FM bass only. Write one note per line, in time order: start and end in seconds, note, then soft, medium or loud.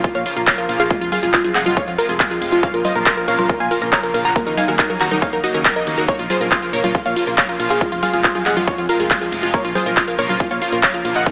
0.15 0.24 A#2 medium
0.37 0.46 A#1 medium
0.69 0.78 A#1 medium
0.80 0.89 A#1 medium
1.01 1.10 F1 medium
1.23 1.32 F1 medium
1.55 1.64 F1 loud
1.66 1.75 F1 medium
1.88 1.97 F2 medium
2.09 2.18 F1 medium
2.42 2.51 F1 medium
2.52 2.62 F1 medium
2.74 2.83 A#1 medium
2.96 3.05 A#1 medium
3.28 3.37 A#1 medium
3.39 3.48 A#1 medium
3.60 3.69 A#2 medium
3.82 3.91 A#1 medium
4.14 4.23 A#1 medium
4.25 4.34 A#1 medium
4.47 4.56 D#2 medium
4.68 4.77 D#2 medium
5.01 5.10 D#2 medium
5.11 5.21 D#2 medium
5.33 5.42 D#1 medium
5.55 5.64 D#2 medium
5.87 5.96 D#2 medium
5.98 6.07 D#2 medium
6.19 6.28 A#1 medium
6.41 6.50 A#1 medium
6.73 6.82 A#1 medium
6.84 6.93 A#1 medium
7.06 7.15 A#2 medium
7.27 7.36 A#1 medium
7.60 7.69 A#1 medium
7.70 7.80 A#1 medium
7.92 8.01 F1 medium
8.13 8.23 F1 medium
8.46 8.55 F1 medium
8.57 8.66 F1 medium
8.78 8.87 F2 medium
9.00 9.09 F1 medium
9.32 9.41 F1 medium
9.43 9.52 F1 medium
9.65 9.74 A#1 medium
9.86 9.95 A#1 medium
10.19 10.28 A#1 loud
10.29 10.38 A#1 medium
10.51 10.60 A#2 medium
10.72 10.82 A#1 medium
11.05 11.14 A#1 loud
11.16 11.25 A#1 medium